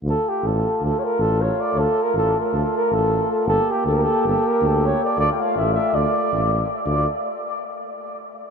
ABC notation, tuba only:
X:1
M:9/8
L:1/8
Q:3/8=105
K:Dm
V:1 name="Tuba" clef=bass
D,, z A,,,2 D,, z A,,,3 | D,, z A,,,2 D,, z A,,,3 | G,,, z D,,2 G,,, z D,,3 | D,, z A,,,2 D,, z A,,,3 |
D,, z8 |]